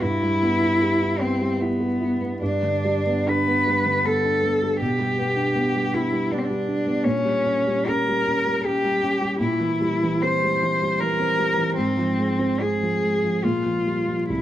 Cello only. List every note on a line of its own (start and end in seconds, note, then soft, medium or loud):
0.02 1.22 E4 medium
1.21 1.63 C4 medium
1.61 2.41 B3 medium
2.42 3.30 D4 medium
3.28 4.07 B4 medium
4.05 4.79 A4 medium
4.80 5.95 G4 medium
5.94 6.33 E4 medium
6.32 6.40 D4 medium
6.38 6.45 C4 medium
6.44 7.06 D4 medium
7.05 7.90 C#4 medium
7.88 8.66 A#4 medium
8.64 9.39 G4 medium
9.40 10.24 E4 medium
10.22 11.01 C5 medium
11.00 11.75 A#4 medium
11.76 12.63 C4 medium
12.61 13.45 G#4 medium
13.44 14.29 F4 medium
14.30 14.42 E4 medium